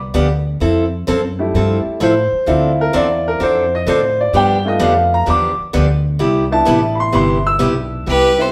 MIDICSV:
0, 0, Header, 1, 7, 480
1, 0, Start_track
1, 0, Key_signature, 0, "major"
1, 0, Tempo, 466926
1, 625, Time_signature, 4, 2, 24, 8
1, 8758, End_track
2, 0, Start_track
2, 0, Title_t, "Fiddle"
2, 0, Program_c, 0, 110
2, 8317, Note_on_c, 0, 71, 106
2, 8650, Note_on_c, 0, 72, 88
2, 8665, Note_off_c, 0, 71, 0
2, 8758, Note_off_c, 0, 72, 0
2, 8758, End_track
3, 0, Start_track
3, 0, Title_t, "Upright piano"
3, 0, Program_c, 1, 0
3, 1427, Note_on_c, 1, 55, 58
3, 1433, Note_on_c, 1, 57, 51
3, 1439, Note_on_c, 1, 64, 59
3, 2032, Note_off_c, 1, 55, 0
3, 2036, Note_off_c, 1, 57, 0
3, 2039, Note_off_c, 1, 64, 0
3, 2087, Note_on_c, 1, 72, 94
3, 2538, Note_on_c, 1, 65, 56
3, 2542, Note_off_c, 1, 72, 0
3, 2542, Note_on_c, 1, 60, 52
3, 2546, Note_on_c, 1, 64, 65
3, 2890, Note_on_c, 1, 70, 98
3, 3032, Note_off_c, 1, 70, 0
3, 3045, Note_on_c, 1, 74, 97
3, 3348, Note_off_c, 1, 74, 0
3, 3369, Note_on_c, 1, 70, 95
3, 3511, Note_off_c, 1, 70, 0
3, 3526, Note_on_c, 1, 72, 89
3, 3828, Note_off_c, 1, 72, 0
3, 3854, Note_on_c, 1, 75, 90
3, 3993, Note_off_c, 1, 75, 0
3, 4000, Note_on_c, 1, 72, 92
3, 4305, Note_off_c, 1, 72, 0
3, 4324, Note_on_c, 1, 74, 81
3, 4419, Note_off_c, 1, 65, 0
3, 4422, Note_off_c, 1, 60, 0
3, 4424, Note_off_c, 1, 64, 0
3, 4468, Note_off_c, 1, 74, 0
3, 4484, Note_on_c, 1, 79, 92
3, 4779, Note_on_c, 1, 57, 61
3, 4787, Note_off_c, 1, 79, 0
3, 4787, Note_on_c, 1, 59, 52
3, 4795, Note_on_c, 1, 65, 71
3, 4812, Note_on_c, 1, 75, 88
3, 4952, Note_off_c, 1, 75, 0
3, 4970, Note_on_c, 1, 77, 84
3, 5270, Note_off_c, 1, 77, 0
3, 5284, Note_on_c, 1, 82, 95
3, 5388, Note_off_c, 1, 57, 0
3, 5392, Note_off_c, 1, 59, 0
3, 5396, Note_off_c, 1, 65, 0
3, 5428, Note_off_c, 1, 82, 0
3, 5448, Note_on_c, 1, 86, 102
3, 5749, Note_off_c, 1, 86, 0
3, 6694, Note_on_c, 1, 59, 62
3, 6701, Note_on_c, 1, 62, 52
3, 6703, Note_on_c, 1, 64, 73
3, 6707, Note_on_c, 1, 81, 105
3, 7147, Note_on_c, 1, 83, 65
3, 7171, Note_off_c, 1, 81, 0
3, 7192, Note_off_c, 1, 83, 0
3, 7196, Note_on_c, 1, 84, 94
3, 7338, Note_off_c, 1, 84, 0
3, 7353, Note_on_c, 1, 84, 102
3, 7659, Note_off_c, 1, 84, 0
3, 7675, Note_on_c, 1, 88, 112
3, 8256, Note_off_c, 1, 59, 0
3, 8259, Note_off_c, 1, 62, 0
3, 8261, Note_off_c, 1, 64, 0
3, 8290, Note_off_c, 1, 88, 0
3, 8611, Note_on_c, 1, 59, 63
3, 8615, Note_on_c, 1, 60, 64
3, 8623, Note_on_c, 1, 64, 61
3, 8624, Note_on_c, 1, 67, 60
3, 8630, Note_on_c, 1, 71, 73
3, 8758, Note_off_c, 1, 59, 0
3, 8758, Note_off_c, 1, 60, 0
3, 8758, Note_off_c, 1, 64, 0
3, 8758, Note_off_c, 1, 67, 0
3, 8758, Note_off_c, 1, 71, 0
3, 8758, End_track
4, 0, Start_track
4, 0, Title_t, "Fiddle"
4, 0, Program_c, 2, 110
4, 8329, Note_on_c, 2, 67, 82
4, 8638, Note_on_c, 2, 69, 68
4, 8653, Note_off_c, 2, 67, 0
4, 8758, Note_off_c, 2, 69, 0
4, 8758, End_track
5, 0, Start_track
5, 0, Title_t, "Steel-string acoustic guitar"
5, 0, Program_c, 3, 25
5, 143, Note_on_c, 3, 50, 75
5, 144, Note_on_c, 3, 53, 81
5, 146, Note_on_c, 3, 59, 88
5, 147, Note_on_c, 3, 62, 89
5, 155, Note_on_c, 3, 67, 80
5, 269, Note_off_c, 3, 50, 0
5, 270, Note_off_c, 3, 53, 0
5, 271, Note_off_c, 3, 59, 0
5, 271, Note_off_c, 3, 62, 0
5, 275, Note_off_c, 3, 67, 0
5, 619, Note_on_c, 3, 53, 54
5, 628, Note_on_c, 3, 60, 56
5, 629, Note_on_c, 3, 64, 69
5, 631, Note_on_c, 3, 69, 65
5, 858, Note_off_c, 3, 53, 0
5, 863, Note_off_c, 3, 60, 0
5, 863, Note_off_c, 3, 64, 0
5, 864, Note_off_c, 3, 69, 0
5, 1101, Note_on_c, 3, 53, 86
5, 1108, Note_on_c, 3, 60, 83
5, 1108, Note_on_c, 3, 64, 82
5, 1115, Note_on_c, 3, 69, 95
5, 1228, Note_off_c, 3, 53, 0
5, 1231, Note_off_c, 3, 60, 0
5, 1232, Note_off_c, 3, 64, 0
5, 1235, Note_off_c, 3, 69, 0
5, 1592, Note_on_c, 3, 53, 58
5, 1593, Note_on_c, 3, 60, 63
5, 1599, Note_on_c, 3, 64, 62
5, 1602, Note_on_c, 3, 69, 61
5, 1824, Note_off_c, 3, 53, 0
5, 1825, Note_off_c, 3, 60, 0
5, 1828, Note_off_c, 3, 64, 0
5, 1830, Note_off_c, 3, 69, 0
5, 2058, Note_on_c, 3, 53, 85
5, 2063, Note_on_c, 3, 60, 78
5, 2065, Note_on_c, 3, 64, 79
5, 2066, Note_on_c, 3, 69, 92
5, 2186, Note_off_c, 3, 53, 0
5, 2189, Note_off_c, 3, 60, 0
5, 2190, Note_off_c, 3, 64, 0
5, 2190, Note_off_c, 3, 69, 0
5, 2533, Note_on_c, 3, 50, 58
5, 2540, Note_on_c, 3, 53, 63
5, 2541, Note_on_c, 3, 60, 54
5, 2544, Note_on_c, 3, 62, 62
5, 2546, Note_on_c, 3, 69, 71
5, 2775, Note_off_c, 3, 50, 0
5, 2778, Note_off_c, 3, 53, 0
5, 2779, Note_off_c, 3, 60, 0
5, 2780, Note_off_c, 3, 62, 0
5, 2781, Note_off_c, 3, 69, 0
5, 3014, Note_on_c, 3, 50, 84
5, 3016, Note_on_c, 3, 53, 81
5, 3019, Note_on_c, 3, 60, 85
5, 3023, Note_on_c, 3, 62, 88
5, 3025, Note_on_c, 3, 69, 88
5, 3144, Note_off_c, 3, 50, 0
5, 3145, Note_off_c, 3, 53, 0
5, 3147, Note_off_c, 3, 60, 0
5, 3149, Note_off_c, 3, 62, 0
5, 3150, Note_off_c, 3, 69, 0
5, 3494, Note_on_c, 3, 60, 62
5, 3495, Note_on_c, 3, 50, 62
5, 3495, Note_on_c, 3, 53, 66
5, 3498, Note_on_c, 3, 62, 63
5, 3503, Note_on_c, 3, 69, 70
5, 3735, Note_off_c, 3, 60, 0
5, 3736, Note_off_c, 3, 50, 0
5, 3736, Note_off_c, 3, 53, 0
5, 3737, Note_off_c, 3, 62, 0
5, 3740, Note_off_c, 3, 69, 0
5, 3974, Note_on_c, 3, 50, 75
5, 3981, Note_on_c, 3, 53, 84
5, 3984, Note_on_c, 3, 60, 89
5, 3987, Note_on_c, 3, 62, 94
5, 3989, Note_on_c, 3, 69, 91
5, 4104, Note_off_c, 3, 50, 0
5, 4107, Note_off_c, 3, 53, 0
5, 4109, Note_off_c, 3, 60, 0
5, 4111, Note_off_c, 3, 62, 0
5, 4112, Note_off_c, 3, 69, 0
5, 4456, Note_on_c, 3, 50, 56
5, 4457, Note_on_c, 3, 53, 54
5, 4461, Note_on_c, 3, 59, 65
5, 4461, Note_on_c, 3, 62, 60
5, 4464, Note_on_c, 3, 67, 67
5, 4696, Note_off_c, 3, 50, 0
5, 4696, Note_off_c, 3, 53, 0
5, 4698, Note_off_c, 3, 59, 0
5, 4699, Note_off_c, 3, 62, 0
5, 4700, Note_off_c, 3, 67, 0
5, 4929, Note_on_c, 3, 50, 93
5, 4930, Note_on_c, 3, 53, 89
5, 4932, Note_on_c, 3, 59, 89
5, 4933, Note_on_c, 3, 62, 84
5, 4933, Note_on_c, 3, 67, 87
5, 5061, Note_off_c, 3, 50, 0
5, 5062, Note_off_c, 3, 53, 0
5, 5063, Note_off_c, 3, 59, 0
5, 5064, Note_off_c, 3, 62, 0
5, 5064, Note_off_c, 3, 67, 0
5, 5408, Note_on_c, 3, 50, 63
5, 5410, Note_on_c, 3, 53, 63
5, 5413, Note_on_c, 3, 62, 66
5, 5415, Note_on_c, 3, 59, 64
5, 5419, Note_on_c, 3, 67, 65
5, 5652, Note_off_c, 3, 50, 0
5, 5653, Note_off_c, 3, 53, 0
5, 5655, Note_off_c, 3, 59, 0
5, 5655, Note_off_c, 3, 62, 0
5, 5657, Note_off_c, 3, 67, 0
5, 5893, Note_on_c, 3, 50, 86
5, 5896, Note_on_c, 3, 59, 85
5, 5897, Note_on_c, 3, 53, 88
5, 5898, Note_on_c, 3, 62, 89
5, 5900, Note_on_c, 3, 67, 96
5, 6023, Note_off_c, 3, 50, 0
5, 6024, Note_off_c, 3, 59, 0
5, 6025, Note_off_c, 3, 53, 0
5, 6026, Note_off_c, 3, 62, 0
5, 6027, Note_off_c, 3, 67, 0
5, 6365, Note_on_c, 3, 48, 62
5, 6366, Note_on_c, 3, 55, 62
5, 6370, Note_on_c, 3, 59, 60
5, 6372, Note_on_c, 3, 64, 69
5, 6373, Note_on_c, 3, 67, 66
5, 6610, Note_off_c, 3, 48, 0
5, 6611, Note_off_c, 3, 55, 0
5, 6613, Note_off_c, 3, 59, 0
5, 6614, Note_off_c, 3, 64, 0
5, 6614, Note_off_c, 3, 67, 0
5, 6840, Note_on_c, 3, 48, 85
5, 6846, Note_on_c, 3, 55, 78
5, 6848, Note_on_c, 3, 59, 78
5, 6850, Note_on_c, 3, 64, 91
5, 6855, Note_on_c, 3, 67, 96
5, 6976, Note_off_c, 3, 48, 0
5, 6980, Note_off_c, 3, 55, 0
5, 6981, Note_off_c, 3, 59, 0
5, 6981, Note_off_c, 3, 64, 0
5, 6984, Note_off_c, 3, 67, 0
5, 7323, Note_on_c, 3, 48, 63
5, 7325, Note_on_c, 3, 55, 58
5, 7326, Note_on_c, 3, 59, 71
5, 7330, Note_on_c, 3, 67, 62
5, 7334, Note_on_c, 3, 64, 66
5, 7569, Note_off_c, 3, 48, 0
5, 7570, Note_off_c, 3, 55, 0
5, 7571, Note_off_c, 3, 59, 0
5, 7573, Note_off_c, 3, 67, 0
5, 7575, Note_off_c, 3, 64, 0
5, 7801, Note_on_c, 3, 48, 73
5, 7803, Note_on_c, 3, 55, 90
5, 7804, Note_on_c, 3, 59, 92
5, 7808, Note_on_c, 3, 64, 86
5, 7812, Note_on_c, 3, 67, 91
5, 7937, Note_off_c, 3, 48, 0
5, 7938, Note_off_c, 3, 55, 0
5, 7939, Note_off_c, 3, 59, 0
5, 7941, Note_off_c, 3, 64, 0
5, 7943, Note_off_c, 3, 67, 0
5, 8290, Note_on_c, 3, 48, 51
5, 8295, Note_on_c, 3, 55, 48
5, 8295, Note_on_c, 3, 59, 59
5, 8300, Note_on_c, 3, 64, 51
5, 8301, Note_on_c, 3, 67, 64
5, 8533, Note_off_c, 3, 48, 0
5, 8535, Note_off_c, 3, 55, 0
5, 8536, Note_off_c, 3, 59, 0
5, 8538, Note_off_c, 3, 64, 0
5, 8538, Note_off_c, 3, 67, 0
5, 8758, End_track
6, 0, Start_track
6, 0, Title_t, "Upright bass"
6, 0, Program_c, 4, 32
6, 0, Note_on_c, 4, 36, 77
6, 130, Note_off_c, 4, 36, 0
6, 143, Note_on_c, 4, 38, 88
6, 610, Note_off_c, 4, 38, 0
6, 628, Note_on_c, 4, 41, 80
6, 1092, Note_off_c, 4, 41, 0
6, 1113, Note_on_c, 4, 42, 97
6, 1575, Note_off_c, 4, 42, 0
6, 1586, Note_on_c, 4, 43, 77
6, 1886, Note_off_c, 4, 43, 0
6, 2060, Note_on_c, 4, 45, 89
6, 2362, Note_off_c, 4, 45, 0
6, 2540, Note_on_c, 4, 38, 79
6, 3008, Note_off_c, 4, 38, 0
6, 3025, Note_on_c, 4, 40, 97
6, 3490, Note_off_c, 4, 40, 0
6, 3497, Note_on_c, 4, 41, 81
6, 3966, Note_off_c, 4, 41, 0
6, 3974, Note_on_c, 4, 45, 85
6, 4444, Note_off_c, 4, 45, 0
6, 4451, Note_on_c, 4, 43, 78
6, 4923, Note_off_c, 4, 43, 0
6, 4932, Note_on_c, 4, 41, 91
6, 5403, Note_off_c, 4, 41, 0
6, 5420, Note_on_c, 4, 40, 93
6, 5722, Note_off_c, 4, 40, 0
6, 5901, Note_on_c, 4, 38, 95
6, 6368, Note_off_c, 4, 38, 0
6, 6379, Note_on_c, 4, 36, 78
6, 6846, Note_off_c, 4, 36, 0
6, 6860, Note_on_c, 4, 33, 104
6, 7327, Note_off_c, 4, 33, 0
6, 7336, Note_on_c, 4, 31, 93
6, 7805, Note_off_c, 4, 31, 0
6, 7812, Note_on_c, 4, 35, 101
6, 8283, Note_off_c, 4, 35, 0
6, 8300, Note_on_c, 4, 36, 81
6, 8758, Note_off_c, 4, 36, 0
6, 8758, End_track
7, 0, Start_track
7, 0, Title_t, "Muted upright bass strokes"
7, 1906, Note_on_c, 9, 29, 40
7, 2008, Note_off_c, 9, 29, 0
7, 2386, Note_on_c, 9, 29, 42
7, 2489, Note_off_c, 9, 29, 0
7, 5740, Note_on_c, 9, 29, 44
7, 5843, Note_off_c, 9, 29, 0
7, 8758, End_track
0, 0, End_of_file